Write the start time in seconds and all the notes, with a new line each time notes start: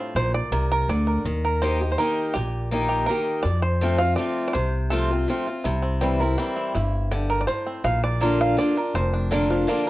Already playing: A2 C4 F4
0.15 A#1 A#2 C5
0.34 D5
0.51 C2 C3 A#4
0.71 A#4
0.88 D2 D3 D5
1.07 A#4
1.25 D#2 D#3
1.45 A#4
1.62 D#3 A#3 D#4 G4 C5
1.81 D#4 G4
1.92 C5
1.98 D#3 A#3 D#4 G4 A#4
2.34 A#1 A#2 G4
2.71 D#3 A#3 D#4 G4
2.89 G4
3.06 D#3 A#3 D#4 A#4
3.11 G4
3.43 F2 D5
3.62 C5
3.81 F3 A3 C4 F4
3.99 C4 F4 F5
4.16 F3 A3 C4 F4 D5
4.48 D5
4.54 C2 C3 C5
4.90 F3 A3 C4 F4 A4
5.10 C4 F4
5.28 F3 A3 C4 F4
5.47 C4 F4
5.64 C2 C3 E4
5.82 C4
6.01 E3 G3 C4 E4 G4
6.20 C4 E4 A#4
6.38 E3 G3 C4 E4 G4
6.56 C4
6.75 G1 G2 E4
7.11 D3 G4
7.30 A#4
7.41 D5
7.47 A2 C5
7.67 C4
7.84 A#1 A#2 F5
8.04 D5
8.21 D3 A#3 D4 F4 A#4
8.41 F5
8.57 D3 A#3 D4 F4 D5
8.76 D4 F4 A#4
8.94 F1 F2 C5
9.13 D4
9.31 D3 A#3 D4 F4 A#4
9.50 F3 D4 F4
9.67 D3 A#3 D4 F4
9.86 F4